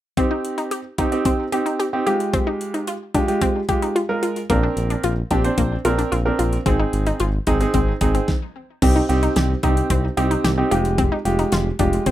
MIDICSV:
0, 0, Header, 1, 5, 480
1, 0, Start_track
1, 0, Key_signature, -3, "minor"
1, 0, Tempo, 540541
1, 154, Time_signature, 4, 2, 24, 8
1, 10756, End_track
2, 0, Start_track
2, 0, Title_t, "Grand piano"
2, 0, Program_c, 0, 0
2, 153, Note_on_c, 0, 63, 69
2, 153, Note_on_c, 0, 67, 82
2, 154, Note_on_c, 0, 60, 73
2, 697, Note_off_c, 0, 67, 0
2, 698, Note_off_c, 0, 60, 0
2, 698, Note_off_c, 0, 63, 0
2, 874, Note_on_c, 0, 60, 77
2, 874, Note_on_c, 0, 63, 71
2, 875, Note_on_c, 0, 67, 84
2, 965, Note_off_c, 0, 60, 0
2, 965, Note_off_c, 0, 63, 0
2, 965, Note_off_c, 0, 67, 0
2, 994, Note_on_c, 0, 60, 76
2, 994, Note_on_c, 0, 63, 70
2, 994, Note_on_c, 0, 67, 85
2, 1266, Note_off_c, 0, 60, 0
2, 1266, Note_off_c, 0, 63, 0
2, 1266, Note_off_c, 0, 67, 0
2, 1353, Note_on_c, 0, 60, 79
2, 1353, Note_on_c, 0, 63, 73
2, 1353, Note_on_c, 0, 67, 83
2, 1625, Note_off_c, 0, 60, 0
2, 1625, Note_off_c, 0, 63, 0
2, 1625, Note_off_c, 0, 67, 0
2, 1715, Note_on_c, 0, 60, 79
2, 1715, Note_on_c, 0, 63, 69
2, 1715, Note_on_c, 0, 67, 84
2, 1822, Note_off_c, 0, 67, 0
2, 1834, Note_off_c, 0, 60, 0
2, 1835, Note_off_c, 0, 63, 0
2, 1835, Note_on_c, 0, 56, 80
2, 1836, Note_on_c, 0, 65, 74
2, 1836, Note_on_c, 0, 67, 89
2, 2603, Note_off_c, 0, 56, 0
2, 2603, Note_off_c, 0, 65, 0
2, 2603, Note_off_c, 0, 67, 0
2, 2793, Note_on_c, 0, 56, 80
2, 2794, Note_on_c, 0, 65, 73
2, 2794, Note_on_c, 0, 67, 87
2, 2884, Note_off_c, 0, 56, 0
2, 2884, Note_off_c, 0, 65, 0
2, 2884, Note_off_c, 0, 67, 0
2, 2912, Note_on_c, 0, 67, 86
2, 2913, Note_on_c, 0, 56, 79
2, 2914, Note_on_c, 0, 65, 70
2, 3185, Note_off_c, 0, 67, 0
2, 3186, Note_off_c, 0, 56, 0
2, 3186, Note_off_c, 0, 65, 0
2, 3272, Note_on_c, 0, 67, 87
2, 3273, Note_on_c, 0, 56, 77
2, 3273, Note_on_c, 0, 65, 73
2, 3545, Note_off_c, 0, 65, 0
2, 3545, Note_off_c, 0, 67, 0
2, 3546, Note_off_c, 0, 56, 0
2, 3632, Note_on_c, 0, 56, 75
2, 3632, Note_on_c, 0, 65, 73
2, 3633, Note_on_c, 0, 70, 84
2, 3905, Note_off_c, 0, 56, 0
2, 3905, Note_off_c, 0, 65, 0
2, 3905, Note_off_c, 0, 70, 0
2, 3994, Note_on_c, 0, 60, 75
2, 3994, Note_on_c, 0, 62, 70
2, 3994, Note_on_c, 0, 70, 84
2, 4538, Note_off_c, 0, 60, 0
2, 4538, Note_off_c, 0, 62, 0
2, 4538, Note_off_c, 0, 70, 0
2, 4713, Note_on_c, 0, 60, 82
2, 4713, Note_on_c, 0, 62, 73
2, 4713, Note_on_c, 0, 67, 89
2, 4804, Note_off_c, 0, 60, 0
2, 4804, Note_off_c, 0, 62, 0
2, 4804, Note_off_c, 0, 67, 0
2, 4834, Note_on_c, 0, 60, 81
2, 4834, Note_on_c, 0, 62, 71
2, 4834, Note_on_c, 0, 72, 88
2, 5106, Note_off_c, 0, 60, 0
2, 5106, Note_off_c, 0, 62, 0
2, 5106, Note_off_c, 0, 72, 0
2, 5194, Note_on_c, 0, 60, 79
2, 5194, Note_on_c, 0, 70, 89
2, 5195, Note_on_c, 0, 62, 72
2, 5466, Note_off_c, 0, 60, 0
2, 5466, Note_off_c, 0, 62, 0
2, 5466, Note_off_c, 0, 70, 0
2, 5555, Note_on_c, 0, 60, 77
2, 5555, Note_on_c, 0, 62, 71
2, 5555, Note_on_c, 0, 70, 86
2, 5826, Note_off_c, 0, 60, 0
2, 5826, Note_off_c, 0, 62, 0
2, 5827, Note_off_c, 0, 70, 0
2, 5914, Note_on_c, 0, 68, 83
2, 5915, Note_on_c, 0, 60, 77
2, 5915, Note_on_c, 0, 63, 72
2, 6458, Note_off_c, 0, 60, 0
2, 6458, Note_off_c, 0, 63, 0
2, 6458, Note_off_c, 0, 68, 0
2, 6633, Note_on_c, 0, 60, 80
2, 6633, Note_on_c, 0, 63, 76
2, 6633, Note_on_c, 0, 68, 88
2, 6724, Note_off_c, 0, 60, 0
2, 6724, Note_off_c, 0, 63, 0
2, 6724, Note_off_c, 0, 68, 0
2, 6754, Note_on_c, 0, 60, 77
2, 6754, Note_on_c, 0, 63, 73
2, 6754, Note_on_c, 0, 68, 91
2, 7026, Note_off_c, 0, 60, 0
2, 7026, Note_off_c, 0, 63, 0
2, 7026, Note_off_c, 0, 68, 0
2, 7114, Note_on_c, 0, 63, 71
2, 7114, Note_on_c, 0, 68, 87
2, 7115, Note_on_c, 0, 60, 81
2, 7354, Note_off_c, 0, 60, 0
2, 7354, Note_off_c, 0, 63, 0
2, 7354, Note_off_c, 0, 68, 0
2, 7833, Note_on_c, 0, 60, 78
2, 7833, Note_on_c, 0, 67, 89
2, 7834, Note_on_c, 0, 63, 70
2, 8015, Note_off_c, 0, 60, 0
2, 8015, Note_off_c, 0, 63, 0
2, 8015, Note_off_c, 0, 67, 0
2, 8073, Note_on_c, 0, 60, 82
2, 8073, Note_on_c, 0, 67, 91
2, 8074, Note_on_c, 0, 63, 76
2, 8436, Note_off_c, 0, 60, 0
2, 8436, Note_off_c, 0, 67, 0
2, 8437, Note_off_c, 0, 63, 0
2, 8553, Note_on_c, 0, 60, 83
2, 8553, Note_on_c, 0, 63, 74
2, 8553, Note_on_c, 0, 67, 88
2, 8916, Note_off_c, 0, 60, 0
2, 8916, Note_off_c, 0, 63, 0
2, 8916, Note_off_c, 0, 67, 0
2, 9032, Note_on_c, 0, 60, 83
2, 9032, Note_on_c, 0, 63, 74
2, 9032, Note_on_c, 0, 67, 86
2, 9305, Note_off_c, 0, 60, 0
2, 9305, Note_off_c, 0, 63, 0
2, 9305, Note_off_c, 0, 67, 0
2, 9391, Note_on_c, 0, 63, 74
2, 9392, Note_on_c, 0, 60, 80
2, 9392, Note_on_c, 0, 67, 89
2, 9499, Note_off_c, 0, 67, 0
2, 9512, Note_on_c, 0, 56, 83
2, 9512, Note_on_c, 0, 65, 75
2, 9513, Note_off_c, 0, 60, 0
2, 9513, Note_off_c, 0, 63, 0
2, 9513, Note_on_c, 0, 67, 91
2, 9897, Note_off_c, 0, 56, 0
2, 9897, Note_off_c, 0, 65, 0
2, 9897, Note_off_c, 0, 67, 0
2, 9991, Note_on_c, 0, 56, 81
2, 9992, Note_on_c, 0, 65, 75
2, 9992, Note_on_c, 0, 67, 91
2, 10355, Note_off_c, 0, 56, 0
2, 10355, Note_off_c, 0, 65, 0
2, 10356, Note_off_c, 0, 67, 0
2, 10472, Note_on_c, 0, 56, 80
2, 10472, Note_on_c, 0, 65, 75
2, 10472, Note_on_c, 0, 67, 87
2, 10756, Note_off_c, 0, 56, 0
2, 10756, Note_off_c, 0, 65, 0
2, 10756, Note_off_c, 0, 67, 0
2, 10756, End_track
3, 0, Start_track
3, 0, Title_t, "Synth arpeggio sound"
3, 0, Program_c, 1, 84
3, 153, Note_on_c, 1, 60, 89
3, 238, Note_off_c, 1, 60, 0
3, 273, Note_on_c, 1, 63, 70
3, 442, Note_off_c, 1, 63, 0
3, 514, Note_on_c, 1, 63, 69
3, 598, Note_off_c, 1, 63, 0
3, 634, Note_on_c, 1, 67, 80
3, 802, Note_off_c, 1, 67, 0
3, 874, Note_on_c, 1, 63, 76
3, 1043, Note_off_c, 1, 63, 0
3, 1115, Note_on_c, 1, 60, 86
3, 1283, Note_off_c, 1, 60, 0
3, 1353, Note_on_c, 1, 67, 79
3, 1438, Note_off_c, 1, 67, 0
3, 1472, Note_on_c, 1, 63, 69
3, 1557, Note_off_c, 1, 63, 0
3, 1594, Note_on_c, 1, 67, 85
3, 1763, Note_off_c, 1, 67, 0
3, 1834, Note_on_c, 1, 67, 79
3, 2002, Note_off_c, 1, 67, 0
3, 2074, Note_on_c, 1, 60, 91
3, 2158, Note_off_c, 1, 60, 0
3, 2193, Note_on_c, 1, 63, 72
3, 2362, Note_off_c, 1, 63, 0
3, 2434, Note_on_c, 1, 63, 72
3, 2518, Note_off_c, 1, 63, 0
3, 2553, Note_on_c, 1, 65, 84
3, 2722, Note_off_c, 1, 65, 0
3, 2793, Note_on_c, 1, 62, 73
3, 2962, Note_off_c, 1, 62, 0
3, 3033, Note_on_c, 1, 60, 91
3, 3202, Note_off_c, 1, 60, 0
3, 3274, Note_on_c, 1, 67, 79
3, 3359, Note_off_c, 1, 67, 0
3, 3396, Note_on_c, 1, 63, 69
3, 3479, Note_off_c, 1, 63, 0
3, 3514, Note_on_c, 1, 65, 83
3, 3682, Note_off_c, 1, 65, 0
3, 3753, Note_on_c, 1, 65, 77
3, 3922, Note_off_c, 1, 65, 0
3, 3993, Note_on_c, 1, 58, 89
3, 4077, Note_off_c, 1, 58, 0
3, 4114, Note_on_c, 1, 62, 70
3, 4283, Note_off_c, 1, 62, 0
3, 4354, Note_on_c, 1, 62, 72
3, 4438, Note_off_c, 1, 62, 0
3, 4474, Note_on_c, 1, 65, 83
3, 4643, Note_off_c, 1, 65, 0
3, 4715, Note_on_c, 1, 62, 77
3, 4883, Note_off_c, 1, 62, 0
3, 4953, Note_on_c, 1, 58, 87
3, 5122, Note_off_c, 1, 58, 0
3, 5195, Note_on_c, 1, 65, 82
3, 5279, Note_off_c, 1, 65, 0
3, 5314, Note_on_c, 1, 62, 71
3, 5398, Note_off_c, 1, 62, 0
3, 5434, Note_on_c, 1, 65, 82
3, 5602, Note_off_c, 1, 65, 0
3, 5674, Note_on_c, 1, 65, 79
3, 5843, Note_off_c, 1, 65, 0
3, 5913, Note_on_c, 1, 60, 90
3, 5998, Note_off_c, 1, 60, 0
3, 6034, Note_on_c, 1, 63, 71
3, 6202, Note_off_c, 1, 63, 0
3, 6275, Note_on_c, 1, 63, 73
3, 6359, Note_off_c, 1, 63, 0
3, 6395, Note_on_c, 1, 65, 84
3, 6563, Note_off_c, 1, 65, 0
3, 6635, Note_on_c, 1, 63, 77
3, 6803, Note_off_c, 1, 63, 0
3, 6875, Note_on_c, 1, 60, 87
3, 7043, Note_off_c, 1, 60, 0
3, 7114, Note_on_c, 1, 63, 78
3, 7198, Note_off_c, 1, 63, 0
3, 7235, Note_on_c, 1, 60, 70
3, 7319, Note_off_c, 1, 60, 0
3, 7835, Note_on_c, 1, 60, 91
3, 7919, Note_off_c, 1, 60, 0
3, 7954, Note_on_c, 1, 63, 73
3, 8123, Note_off_c, 1, 63, 0
3, 8194, Note_on_c, 1, 63, 73
3, 8278, Note_off_c, 1, 63, 0
3, 8315, Note_on_c, 1, 67, 83
3, 8483, Note_off_c, 1, 67, 0
3, 8555, Note_on_c, 1, 63, 75
3, 8723, Note_off_c, 1, 63, 0
3, 8794, Note_on_c, 1, 60, 88
3, 8963, Note_off_c, 1, 60, 0
3, 9035, Note_on_c, 1, 67, 80
3, 9119, Note_off_c, 1, 67, 0
3, 9154, Note_on_c, 1, 63, 75
3, 9238, Note_off_c, 1, 63, 0
3, 9274, Note_on_c, 1, 67, 87
3, 9443, Note_off_c, 1, 67, 0
3, 9514, Note_on_c, 1, 67, 81
3, 9682, Note_off_c, 1, 67, 0
3, 9753, Note_on_c, 1, 60, 92
3, 9838, Note_off_c, 1, 60, 0
3, 9873, Note_on_c, 1, 63, 72
3, 10042, Note_off_c, 1, 63, 0
3, 10115, Note_on_c, 1, 63, 71
3, 10199, Note_off_c, 1, 63, 0
3, 10234, Note_on_c, 1, 65, 81
3, 10403, Note_off_c, 1, 65, 0
3, 10474, Note_on_c, 1, 62, 77
3, 10642, Note_off_c, 1, 62, 0
3, 10714, Note_on_c, 1, 60, 89
3, 10756, Note_off_c, 1, 60, 0
3, 10756, End_track
4, 0, Start_track
4, 0, Title_t, "Analog synth bass"
4, 0, Program_c, 2, 38
4, 3994, Note_on_c, 2, 34, 107
4, 4162, Note_off_c, 2, 34, 0
4, 4234, Note_on_c, 2, 34, 100
4, 4402, Note_off_c, 2, 34, 0
4, 4474, Note_on_c, 2, 34, 98
4, 4642, Note_off_c, 2, 34, 0
4, 4714, Note_on_c, 2, 34, 97
4, 4882, Note_off_c, 2, 34, 0
4, 4953, Note_on_c, 2, 34, 105
4, 5121, Note_off_c, 2, 34, 0
4, 5194, Note_on_c, 2, 34, 89
4, 5362, Note_off_c, 2, 34, 0
4, 5433, Note_on_c, 2, 34, 94
4, 5602, Note_off_c, 2, 34, 0
4, 5675, Note_on_c, 2, 34, 101
4, 5843, Note_off_c, 2, 34, 0
4, 5914, Note_on_c, 2, 32, 108
4, 6082, Note_off_c, 2, 32, 0
4, 6153, Note_on_c, 2, 32, 92
4, 6322, Note_off_c, 2, 32, 0
4, 6394, Note_on_c, 2, 32, 101
4, 6562, Note_off_c, 2, 32, 0
4, 6633, Note_on_c, 2, 32, 99
4, 6801, Note_off_c, 2, 32, 0
4, 6873, Note_on_c, 2, 32, 99
4, 7041, Note_off_c, 2, 32, 0
4, 7114, Note_on_c, 2, 32, 97
4, 7282, Note_off_c, 2, 32, 0
4, 7834, Note_on_c, 2, 36, 106
4, 8002, Note_off_c, 2, 36, 0
4, 8074, Note_on_c, 2, 36, 99
4, 8242, Note_off_c, 2, 36, 0
4, 8314, Note_on_c, 2, 36, 94
4, 8482, Note_off_c, 2, 36, 0
4, 8554, Note_on_c, 2, 36, 106
4, 8722, Note_off_c, 2, 36, 0
4, 8793, Note_on_c, 2, 36, 107
4, 8961, Note_off_c, 2, 36, 0
4, 9033, Note_on_c, 2, 36, 92
4, 9201, Note_off_c, 2, 36, 0
4, 9272, Note_on_c, 2, 36, 95
4, 9441, Note_off_c, 2, 36, 0
4, 9513, Note_on_c, 2, 29, 104
4, 9849, Note_off_c, 2, 29, 0
4, 9992, Note_on_c, 2, 29, 99
4, 10161, Note_off_c, 2, 29, 0
4, 10234, Note_on_c, 2, 29, 102
4, 10402, Note_off_c, 2, 29, 0
4, 10474, Note_on_c, 2, 29, 95
4, 10642, Note_off_c, 2, 29, 0
4, 10712, Note_on_c, 2, 29, 103
4, 10756, Note_off_c, 2, 29, 0
4, 10756, End_track
5, 0, Start_track
5, 0, Title_t, "Drums"
5, 154, Note_on_c, 9, 36, 101
5, 154, Note_on_c, 9, 42, 61
5, 242, Note_off_c, 9, 36, 0
5, 243, Note_off_c, 9, 42, 0
5, 396, Note_on_c, 9, 42, 62
5, 485, Note_off_c, 9, 42, 0
5, 514, Note_on_c, 9, 42, 46
5, 603, Note_off_c, 9, 42, 0
5, 633, Note_on_c, 9, 42, 74
5, 722, Note_off_c, 9, 42, 0
5, 872, Note_on_c, 9, 42, 69
5, 874, Note_on_c, 9, 36, 80
5, 961, Note_off_c, 9, 42, 0
5, 963, Note_off_c, 9, 36, 0
5, 995, Note_on_c, 9, 42, 51
5, 1084, Note_off_c, 9, 42, 0
5, 1112, Note_on_c, 9, 42, 76
5, 1113, Note_on_c, 9, 36, 88
5, 1201, Note_off_c, 9, 42, 0
5, 1202, Note_off_c, 9, 36, 0
5, 1354, Note_on_c, 9, 42, 69
5, 1443, Note_off_c, 9, 42, 0
5, 1476, Note_on_c, 9, 42, 51
5, 1565, Note_off_c, 9, 42, 0
5, 1596, Note_on_c, 9, 42, 59
5, 1685, Note_off_c, 9, 42, 0
5, 1836, Note_on_c, 9, 42, 69
5, 1924, Note_off_c, 9, 42, 0
5, 1955, Note_on_c, 9, 42, 47
5, 2044, Note_off_c, 9, 42, 0
5, 2074, Note_on_c, 9, 36, 105
5, 2075, Note_on_c, 9, 42, 62
5, 2163, Note_off_c, 9, 36, 0
5, 2163, Note_off_c, 9, 42, 0
5, 2316, Note_on_c, 9, 42, 61
5, 2405, Note_off_c, 9, 42, 0
5, 2434, Note_on_c, 9, 42, 45
5, 2523, Note_off_c, 9, 42, 0
5, 2552, Note_on_c, 9, 42, 73
5, 2641, Note_off_c, 9, 42, 0
5, 2793, Note_on_c, 9, 42, 69
5, 2794, Note_on_c, 9, 36, 84
5, 2881, Note_off_c, 9, 42, 0
5, 2883, Note_off_c, 9, 36, 0
5, 2916, Note_on_c, 9, 42, 51
5, 3005, Note_off_c, 9, 42, 0
5, 3032, Note_on_c, 9, 42, 78
5, 3033, Note_on_c, 9, 36, 86
5, 3121, Note_off_c, 9, 42, 0
5, 3122, Note_off_c, 9, 36, 0
5, 3273, Note_on_c, 9, 42, 69
5, 3274, Note_on_c, 9, 36, 85
5, 3362, Note_off_c, 9, 42, 0
5, 3363, Note_off_c, 9, 36, 0
5, 3396, Note_on_c, 9, 42, 50
5, 3485, Note_off_c, 9, 42, 0
5, 3516, Note_on_c, 9, 42, 60
5, 3605, Note_off_c, 9, 42, 0
5, 3754, Note_on_c, 9, 42, 70
5, 3843, Note_off_c, 9, 42, 0
5, 3874, Note_on_c, 9, 42, 47
5, 3963, Note_off_c, 9, 42, 0
5, 3993, Note_on_c, 9, 36, 102
5, 3994, Note_on_c, 9, 42, 61
5, 4082, Note_off_c, 9, 36, 0
5, 4082, Note_off_c, 9, 42, 0
5, 4235, Note_on_c, 9, 42, 62
5, 4324, Note_off_c, 9, 42, 0
5, 4354, Note_on_c, 9, 42, 46
5, 4443, Note_off_c, 9, 42, 0
5, 4471, Note_on_c, 9, 42, 75
5, 4560, Note_off_c, 9, 42, 0
5, 4712, Note_on_c, 9, 42, 72
5, 4714, Note_on_c, 9, 36, 82
5, 4801, Note_off_c, 9, 42, 0
5, 4803, Note_off_c, 9, 36, 0
5, 4835, Note_on_c, 9, 42, 52
5, 4924, Note_off_c, 9, 42, 0
5, 4952, Note_on_c, 9, 42, 79
5, 4953, Note_on_c, 9, 36, 85
5, 5041, Note_off_c, 9, 42, 0
5, 5042, Note_off_c, 9, 36, 0
5, 5194, Note_on_c, 9, 42, 73
5, 5282, Note_off_c, 9, 42, 0
5, 5316, Note_on_c, 9, 42, 51
5, 5405, Note_off_c, 9, 42, 0
5, 5437, Note_on_c, 9, 42, 61
5, 5526, Note_off_c, 9, 42, 0
5, 5676, Note_on_c, 9, 42, 68
5, 5765, Note_off_c, 9, 42, 0
5, 5795, Note_on_c, 9, 42, 46
5, 5884, Note_off_c, 9, 42, 0
5, 5914, Note_on_c, 9, 36, 104
5, 5915, Note_on_c, 9, 42, 60
5, 6002, Note_off_c, 9, 36, 0
5, 6003, Note_off_c, 9, 42, 0
5, 6155, Note_on_c, 9, 42, 63
5, 6244, Note_off_c, 9, 42, 0
5, 6274, Note_on_c, 9, 42, 49
5, 6362, Note_off_c, 9, 42, 0
5, 6391, Note_on_c, 9, 42, 77
5, 6480, Note_off_c, 9, 42, 0
5, 6631, Note_on_c, 9, 42, 70
5, 6634, Note_on_c, 9, 36, 83
5, 6720, Note_off_c, 9, 42, 0
5, 6723, Note_off_c, 9, 36, 0
5, 6754, Note_on_c, 9, 42, 51
5, 6843, Note_off_c, 9, 42, 0
5, 6871, Note_on_c, 9, 42, 80
5, 6873, Note_on_c, 9, 36, 86
5, 6960, Note_off_c, 9, 42, 0
5, 6962, Note_off_c, 9, 36, 0
5, 7112, Note_on_c, 9, 42, 69
5, 7114, Note_on_c, 9, 36, 83
5, 7201, Note_off_c, 9, 42, 0
5, 7203, Note_off_c, 9, 36, 0
5, 7235, Note_on_c, 9, 42, 52
5, 7323, Note_off_c, 9, 42, 0
5, 7352, Note_on_c, 9, 38, 83
5, 7354, Note_on_c, 9, 36, 100
5, 7441, Note_off_c, 9, 38, 0
5, 7442, Note_off_c, 9, 36, 0
5, 7833, Note_on_c, 9, 49, 84
5, 7834, Note_on_c, 9, 36, 105
5, 7834, Note_on_c, 9, 42, 63
5, 7922, Note_off_c, 9, 36, 0
5, 7922, Note_off_c, 9, 42, 0
5, 7922, Note_off_c, 9, 49, 0
5, 8076, Note_on_c, 9, 42, 63
5, 8165, Note_off_c, 9, 42, 0
5, 8194, Note_on_c, 9, 42, 50
5, 8283, Note_off_c, 9, 42, 0
5, 8312, Note_on_c, 9, 42, 73
5, 8316, Note_on_c, 9, 38, 109
5, 8401, Note_off_c, 9, 42, 0
5, 8405, Note_off_c, 9, 38, 0
5, 8552, Note_on_c, 9, 42, 70
5, 8554, Note_on_c, 9, 36, 85
5, 8641, Note_off_c, 9, 42, 0
5, 8643, Note_off_c, 9, 36, 0
5, 8676, Note_on_c, 9, 42, 54
5, 8765, Note_off_c, 9, 42, 0
5, 8792, Note_on_c, 9, 42, 80
5, 8793, Note_on_c, 9, 36, 88
5, 8881, Note_off_c, 9, 42, 0
5, 8882, Note_off_c, 9, 36, 0
5, 9034, Note_on_c, 9, 42, 73
5, 9123, Note_off_c, 9, 42, 0
5, 9156, Note_on_c, 9, 42, 52
5, 9245, Note_off_c, 9, 42, 0
5, 9276, Note_on_c, 9, 38, 108
5, 9276, Note_on_c, 9, 42, 63
5, 9365, Note_off_c, 9, 38, 0
5, 9365, Note_off_c, 9, 42, 0
5, 9515, Note_on_c, 9, 42, 74
5, 9604, Note_off_c, 9, 42, 0
5, 9634, Note_on_c, 9, 42, 46
5, 9723, Note_off_c, 9, 42, 0
5, 9753, Note_on_c, 9, 36, 102
5, 9753, Note_on_c, 9, 42, 62
5, 9842, Note_off_c, 9, 36, 0
5, 9842, Note_off_c, 9, 42, 0
5, 9994, Note_on_c, 9, 42, 65
5, 10083, Note_off_c, 9, 42, 0
5, 10113, Note_on_c, 9, 42, 50
5, 10201, Note_off_c, 9, 42, 0
5, 10229, Note_on_c, 9, 42, 78
5, 10234, Note_on_c, 9, 38, 111
5, 10318, Note_off_c, 9, 42, 0
5, 10322, Note_off_c, 9, 38, 0
5, 10470, Note_on_c, 9, 42, 72
5, 10473, Note_on_c, 9, 36, 84
5, 10559, Note_off_c, 9, 42, 0
5, 10562, Note_off_c, 9, 36, 0
5, 10594, Note_on_c, 9, 42, 54
5, 10683, Note_off_c, 9, 42, 0
5, 10711, Note_on_c, 9, 42, 79
5, 10712, Note_on_c, 9, 36, 88
5, 10756, Note_off_c, 9, 36, 0
5, 10756, Note_off_c, 9, 42, 0
5, 10756, End_track
0, 0, End_of_file